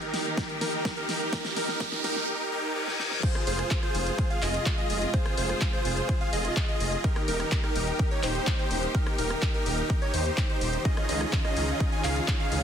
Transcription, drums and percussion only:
0.02 closed hi-hat soft
0.14 snare medium
0.14 open hi-hat loud
0.26 closed hi-hat soft
0.37 kick loud
0.37 snare medium
0.37 closed hi-hat medium
0.49 closed hi-hat soft
0.61 snare medium
0.61 open hi-hat loud
0.73 closed hi-hat soft
0.85 kick loud
0.85 snare medium
0.85 closed hi-hat medium
0.97 closed hi-hat soft
1.09 snare medium
1.09 open hi-hat loud
1.21 closed hi-hat soft
1.33 kick loud
1.33 snare loud
1.33 closed hi-hat medium
1.45 snare medium
1.45 closed hi-hat soft
1.56 snare loud
1.56 open hi-hat loud
1.68 snare medium
1.80 kick loud
1.80 snare loud
1.80 closed hi-hat medium
1.92 snare medium
1.92 closed hi-hat soft
2.04 snare loud
2.04 open hi-hat loud
2.16 snare medium
2.16 closed hi-hat soft
2.88 snare medium
2.99 snare medium
3.11 snare medium
3.23 kick loud
3.23 closed hi-hat medium
3.23 crash loud
3.35 cross-stick medium
3.35 closed hi-hat soft
3.47 open hi-hat loud
3.59 cross-stick medium
3.59 closed hi-hat medium
3.71 kick loud
3.71 clap loud
3.71 closed hi-hat medium
3.83 cross-stick medium
3.83 closed hi-hat soft
3.95 open hi-hat loud
4.07 closed hi-hat medium
4.18 kick loud
4.18 closed hi-hat medium
4.30 closed hi-hat soft
4.42 clap medium
4.42 open hi-hat loud
4.54 closed hi-hat medium
4.66 kick loud
4.66 clap loud
4.66 closed hi-hat medium
4.78 closed hi-hat soft
4.90 open hi-hat loud
5.02 closed hi-hat medium
5.14 kick loud
5.14 closed hi-hat medium
5.26 cross-stick medium
5.26 closed hi-hat soft
5.37 open hi-hat loud
5.49 cross-stick medium
5.49 closed hi-hat medium
5.61 kick loud
5.61 clap loud
5.61 closed hi-hat medium
5.73 closed hi-hat soft
5.85 open hi-hat loud
5.97 closed hi-hat medium
6.09 kick loud
6.09 closed hi-hat medium
6.21 closed hi-hat soft
6.33 open hi-hat loud
6.45 closed hi-hat medium
6.57 kick loud
6.57 clap loud
6.57 closed hi-hat medium
6.69 closed hi-hat soft
6.80 open hi-hat loud
6.92 closed hi-hat medium
7.04 kick loud
7.04 closed hi-hat medium
7.16 cross-stick medium
7.16 closed hi-hat soft
7.28 open hi-hat loud
7.40 cross-stick medium
7.40 closed hi-hat medium
7.52 kick loud
7.52 clap loud
7.52 closed hi-hat medium
7.64 cross-stick medium
7.64 closed hi-hat soft
7.76 open hi-hat loud
7.87 closed hi-hat soft
7.99 kick loud
7.99 closed hi-hat soft
8.11 closed hi-hat soft
8.23 clap medium
8.23 open hi-hat loud
8.35 closed hi-hat medium
8.47 kick loud
8.47 clap loud
8.47 closed hi-hat medium
8.59 closed hi-hat soft
8.71 open hi-hat loud
8.83 closed hi-hat medium
8.95 kick loud
8.95 closed hi-hat medium
9.07 cross-stick medium
9.07 closed hi-hat soft
9.18 open hi-hat loud
9.30 cross-stick medium
9.30 closed hi-hat medium
9.42 kick loud
9.42 clap loud
9.42 closed hi-hat medium
9.54 closed hi-hat soft
9.66 open hi-hat loud
9.78 closed hi-hat soft
9.90 kick loud
9.90 closed hi-hat soft
10.02 closed hi-hat soft
10.14 open hi-hat loud
10.26 closed hi-hat medium
10.38 kick loud
10.38 clap loud
10.38 closed hi-hat soft
10.49 closed hi-hat soft
10.61 open hi-hat loud
10.73 closed hi-hat medium
10.85 kick loud
10.85 closed hi-hat soft
10.97 cross-stick medium
10.97 closed hi-hat soft
11.09 open hi-hat loud
11.21 cross-stick medium
11.21 closed hi-hat medium
11.33 kick loud
11.33 clap loud
11.33 closed hi-hat medium
11.45 cross-stick medium
11.45 closed hi-hat soft
11.57 open hi-hat loud
11.68 closed hi-hat soft
11.80 kick loud
11.80 closed hi-hat soft
11.92 closed hi-hat soft
12.04 clap medium
12.04 open hi-hat loud
12.16 closed hi-hat medium
12.28 kick loud
12.28 clap loud
12.28 closed hi-hat soft
12.40 closed hi-hat soft
12.52 open hi-hat loud

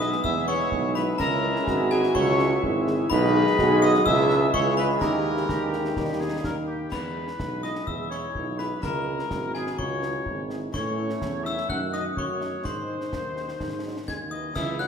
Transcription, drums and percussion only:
0.01 snare medium
0.12 snare medium
0.24 concert bass drum loud
0.48 snare medium
0.72 concert bass drum medium
0.96 snare medium
1.20 concert bass drum medium
1.20 snare medium
1.20 crash soft
1.56 snare medium
1.67 concert bass drum medium
1.67 snare medium
1.91 snare medium
2.03 snare medium
2.15 concert bass drum medium
2.39 snare medium
2.63 concert bass drum medium
2.87 snare medium
3.11 concert bass drum medium
3.11 snare medium
3.11 crash soft
3.47 snare medium
3.59 concert bass drum medium
3.59 snare medium
3.83 snare medium
3.94 snare medium
4.06 concert bass drum loud
4.30 snare medium
4.54 concert bass drum medium
4.78 snare medium
5.01 concert bass drum medium
5.01 snare medium
5.01 crash soft
5.37 snare medium
5.49 concert bass drum medium
5.49 snare medium
5.73 snare medium
5.85 snare medium
5.97 concert bass drum medium
5.97 snare medium
6.44 concert bass drum medium
6.44 snare medium
6.92 concert bass drum medium
6.92 snare medium
6.92 crash soft
7.28 snare medium
7.40 concert bass drum medium
7.40 snare medium
7.64 snare soft
7.75 snare medium
7.87 concert bass drum medium
8.11 snare soft
8.35 concert bass drum medium
8.59 snare soft
8.83 concert bass drum medium
8.83 snare medium
9.19 snare soft
9.31 concert bass drum medium
9.31 snare medium
9.55 snare soft
9.67 snare medium
9.79 concert bass drum medium
10.03 snare medium
10.26 concert bass drum medium
10.50 snare soft
10.74 concert bass drum medium
10.74 snare medium
10.74 crash soft
11.10 snare medium
11.22 concert bass drum medium
11.22 snare medium
11.46 snare soft
11.58 snare medium
11.69 concert bass drum medium
11.93 snare medium
12.17 concert bass drum medium
12.41 snare soft
12.65 concert bass drum medium
12.65 snare medium
13.01 snare soft
13.13 concert bass drum medium
13.13 snare medium
13.37 snare soft
13.49 snare medium
13.60 concert bass drum medium
13.60 snare medium
14.08 concert bass drum medium
14.08 snare medium
14.56 concert bass drum medium
14.56 snare medium
14.56 crash medium
14.80 snare medium

